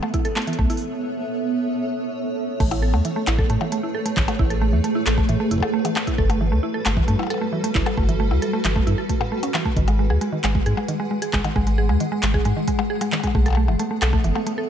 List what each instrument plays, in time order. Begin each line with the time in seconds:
Already playing: ambient pad B3 A4 B4 C#5 E5 F#5
0.03 synth arpeggio sound A3, percussion blips
0.14 synth arpeggio sound E4, kick, closed hi-hat
0.25 synth arpeggio sound A4, closed hi-hat
0.36 synth arpeggio sound A3, clap, closed hi-hat
0.42 closed hi-hat
0.47 synth arpeggio sound E3, closed hi-hat
0.53 closed hi-hat
0.59 sub bass B1, synth arpeggio sound A3, kick
0.70 synth arpeggio sound E4, open hi-hat
0.77 open hi-hat
2.60 sub bass A1, ambient pad A3, synth arpeggio sound A3, kick, crash
2.70 synth arpeggio sound E4, ambient pad G#4, closed hi-hat, percussion blips
2.77 ambient pad B4
2.82 synth arpeggio sound A4
2.94 sub bass E2, synth arpeggio sound A3, percussion blips
3.05 synth arpeggio sound E3, closed hi-hat
3.16 synth arpeggio sound A3
3.27 sub bass A1, synth arpeggio sound E4, clap, closed hi-hat, percussion blips
3.39 synth arpeggio sound A4, kick
3.50 sub bass A2, synth arpeggio sound A3, closed hi-hat
3.61 synth arpeggio sound E3, percussion blips
3.72 synth arpeggio sound A3, closed hi-hat
3.83 synth arpeggio sound E4
3.95 synth arpeggio sound A4
4.06 synth arpeggio sound A3, closed hi-hat
4.17 sub bass A1, synth arpeggio sound E3, kick, clap
4.28 synth arpeggio sound A3, closed hi-hat, percussion blips
4.39 sub bass A1, synth arpeggio sound E4, kick
4.50 synth arpeggio sound A4, closed hi-hat
4.61 synth arpeggio sound A3
4.73 sub bass E2, synth arpeggio sound E3
4.84 synth arpeggio sound A3, closed hi-hat
4.95 synth arpeggio sound E4
5.06 sub bass A1, synth arpeggio sound A4, clap, closed hi-hat
5.18 synth arpeggio sound A3, kick
5.29 sub bass A2, synth arpeggio sound E3, closed hi-hat
5.40 synth arpeggio sound A3
5.51 synth arpeggio sound E4, kick, closed hi-hat
5.54 kick
5.56 kick
5.58 kick
5.60 synth arpeggio sound A4, kick, percussion blips
5.73 synth arpeggio sound A3
5.85 synth arpeggio sound E3, closed hi-hat, percussion blips
5.96 synth arpeggio sound A3, clap, percussion blips
6.07 synth arpeggio sound E4, kick, closed hi-hat
6.18 sub bass G1, ambient pad G3 F#4, synth arpeggio sound A4, kick
6.30 synth arpeggio sound A3, closed hi-hat, percussion blips
6.38 synth arpeggio sound E3, ambient pad A4
6.52 sub bass D2, synth arpeggio sound A3
6.63 synth arpeggio sound E4
6.74 synth arpeggio sound A4
6.85 sub bass G1, synth arpeggio sound A3, clap, closed hi-hat, percussion blips
6.97 synth arpeggio sound E3, kick
7.08 sub bass G2, synth arpeggio sound A3, closed hi-hat
7.19 synth arpeggio sound E4, percussion blips
7.23 percussion blips
7.27 synth arpeggio sound A4, closed hi-hat, percussion blips
7.30 percussion blips
7.34 percussion blips
7.38 synth arpeggio sound A3, percussion blips
7.53 synth arpeggio sound E3
7.64 synth arpeggio sound A3, closed hi-hat
7.75 sub bass G1, synth arpeggio sound E4, kick, clap
7.86 synth arpeggio sound A4, closed hi-hat, percussion blips
7.97 sub bass G1, synth arpeggio sound A3, kick
8.09 synth arpeggio sound E3, closed hi-hat
8.20 synth arpeggio sound A3
8.31 sub bass D2, synth arpeggio sound E4, percussion blips
8.42 synth arpeggio sound A4, closed hi-hat
8.53 synth arpeggio sound A3
8.65 sub bass G1, synth arpeggio sound E3, clap, closed hi-hat
8.76 synth arpeggio sound A3, kick
8.87 sub bass G2, synth arpeggio sound E4, closed hi-hat
8.98 synth arpeggio sound A4
9.09 synth arpeggio sound A3, kick, closed hi-hat
9.21 synth arpeggio sound A2, percussion blips
9.32 synth arpeggio sound A3
9.43 synth arpeggio sound C#4, closed hi-hat, percussion blips
9.54 synth arpeggio sound E3, clap, percussion blips
9.65 synth arpeggio sound A3, kick
9.76 sub bass G#1, synth arpeggio sound D#3, ambient pad G#3, kick, closed hi-hat
9.88 synth arpeggio sound G#3, ambient pad F#5, closed hi-hat, percussion blips
9.93 ambient pad G#4
9.99 synth arpeggio sound G#3
10.10 sub bass D#2, synth arpeggio sound G#4, percussion blips
10.21 synth arpeggio sound G#3, closed hi-hat
10.32 synth arpeggio sound D#3
10.44 sub bass G#1, synth arpeggio sound G#3, clap, closed hi-hat, percussion blips
10.55 synth arpeggio sound G#3, kick
10.66 sub bass G#2, synth arpeggio sound G#4, closed hi-hat
10.77 synth arpeggio sound G#3, percussion blips
10.88 synth arpeggio sound D#3, closed hi-hat
11.00 synth arpeggio sound G#3
11.11 synth arpeggio sound G#3
11.22 synth arpeggio sound G#4, closed hi-hat
11.33 sub bass G#1, synth arpeggio sound G#3, kick, clap
11.45 synth arpeggio sound D#3, closed hi-hat, percussion blips
11.56 sub bass G#1, synth arpeggio sound G#3, kick
11.67 synth arpeggio sound G#3, closed hi-hat
11.78 synth arpeggio sound G#4
11.89 sub bass D#2, synth arpeggio sound G#3, percussion blips
12.00 synth arpeggio sound D#3, closed hi-hat
12.12 synth arpeggio sound G#3
12.23 sub bass G#1, synth arpeggio sound G#3, clap, closed hi-hat
12.34 synth arpeggio sound G#4, kick
12.45 sub bass G#2, synth arpeggio sound G#3, closed hi-hat
12.57 synth arpeggio sound D#3
12.68 synth arpeggio sound G#3, kick, closed hi-hat
12.79 synth arpeggio sound G#3, percussion blips
12.90 synth arpeggio sound G#4
13.01 synth arpeggio sound G#3, closed hi-hat, percussion blips
13.12 synth arpeggio sound D#3, clap, percussion blips
13.20 synth arpeggio sound G#3, kick, closed hi-hat, percussion blips
13.27 percussion blips
13.35 sub bass B1, synth arpeggio sound A3, ambient pad B3, kick
13.43 ambient pad A4, synth arpeggio sound A4, closed hi-hat, percussion blips
13.48 percussion blips
13.50 percussion blips
13.53 percussion blips
13.55 synth arpeggio sound A3, percussion blips
13.60 ambient pad C#5
13.68 sub bass F#1, synth arpeggio sound E3, ambient pad E5, percussion blips
13.79 synth arpeggio sound A3, closed hi-hat
13.91 synth arpeggio sound A3
14.02 sub bass B1, synth arpeggio sound A4, clap, closed hi-hat, percussion blips
14.13 synth arpeggio sound A3, kick
14.24 sub bass F#1, synth arpeggio sound E3, closed hi-hat
14.35 synth arpeggio sound A3, percussion blips
14.47 synth arpeggio sound A3, closed hi-hat
14.58 synth arpeggio sound A4